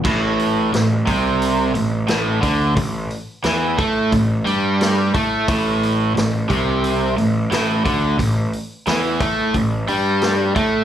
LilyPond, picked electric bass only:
\new Staff \with { instrumentName = "Picked electric bass" } { \clef bass \time 4/4 \key a \minor \tempo 4 = 88 a,,4 a,,8 c,4 a,,8 a,,8 d,8 | a,,8 r8 e,8 a,8 a,,8 g,4 a,8 | a,,4 a,,8 c,4 a,,8 a,,8 d,8 | a,,8 r8 e,8 a,8 a,,8 g,4 a,8 | }